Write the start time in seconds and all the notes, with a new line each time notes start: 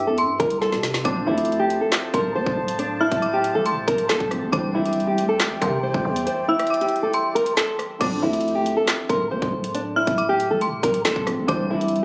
Already playing: D3 E3 G3 C4 D4 D6
0.07 E2 A4
0.18 C6, closed hi-hat
0.24 G2
0.40 C2 A#4, kick, closed hi-hat
0.50 closed hi-hat
0.61 A4, snare
0.72 C3, snare
0.83 snare, closed hi-hat
0.94 snare
1.03 D1 D3 F3 A3 C4 D4 C5 D5 A5 D6, kick, closed hi-hat
1.07 D4
1.27 D2 E4
1.38 closed hi-hat
1.45 closed hi-hat
1.52 closed hi-hat
1.59 G4
1.70 closed hi-hat
1.81 A4
1.92 snare, clap, closed hi-hat
2.14 D1 A#4 C6, kick, closed hi-hat
2.35 F2 C5
2.46 D1, kick
2.57 D1
2.68 closed hi-hat
2.79 D4, closed hi-hat
3.01 E4 F6
3.12 D1, kick, closed hi-hat
3.22 D6, closed hi-hat
3.33 G4
3.44 closed hi-hat
3.55 D2 A4
3.66 C6, closed hi-hat
3.71 D1
3.87 D1 A#4, kick, closed hi-hat
3.98 closed hi-hat
4.09 F2 A4, snare, clap
4.20 D1, kick
4.30 D3 F3 A3 C4 D4, cross-stick, closed hi-hat
4.42 F2
4.51 C2 D3 E3 G3 C4 E4 C5 D5 G5 D6, kick, closed hi-hat
4.55 D4
4.75 C2 E4
4.86 closed hi-hat
4.93 closed hi-hat
5.00 closed hi-hat
5.07 G4
5.18 D2, closed hi-hat
5.29 A4
5.40 C2, snare, clap, closed hi-hat
5.62 C3 A#4 C6, kick, closed hi-hat
5.83 C5
5.94 C2, kick
6.05 E2
6.16 closed hi-hat
6.27 C5, closed hi-hat
6.48 E4 E6
6.59 cross-stick, closed hi-hat
6.67 D6, closed hi-hat
6.74 closed hi-hat
6.81 G4, closed hi-hat
6.89 closed hi-hat
6.96 closed hi-hat
7.03 A4
7.13 C6, closed hi-hat
7.35 A#4, closed hi-hat
7.46 closed hi-hat
7.57 A4, snare, clap
7.79 cross-stick, closed hi-hat
7.99 D1 D3 F3 A3 C4 D4 D6, kick, closed hi-hat, crash
8.03 D4
8.23 D2 E4
8.33 closed hi-hat
8.41 closed hi-hat
8.48 closed hi-hat
8.55 G4
8.66 closed hi-hat
8.77 A4
8.87 snare, clap, closed hi-hat
9.09 D1 A#4 C6, kick, closed hi-hat
9.31 F2 C5
9.42 D1, kick
9.53 D1
9.64 closed hi-hat
9.75 D4, closed hi-hat
9.96 E4 F6
10.07 D1, kick, closed hi-hat
10.18 D6, closed hi-hat
10.29 G4
10.40 closed hi-hat
10.51 D2 A4
10.61 C6, closed hi-hat
10.67 D1
10.83 D1 A#4, kick, closed hi-hat
10.94 closed hi-hat
11.05 F2 A4, snare, clap
11.16 D1, kick
11.26 D3 F3 A3 C4 D4, cross-stick, closed hi-hat
11.38 F2
11.46 C2 D3 E3 G3 C4 C5 D6, kick, closed hi-hat
11.51 D4
11.70 C2 E4
11.81 closed hi-hat
11.88 closed hi-hat
11.96 closed hi-hat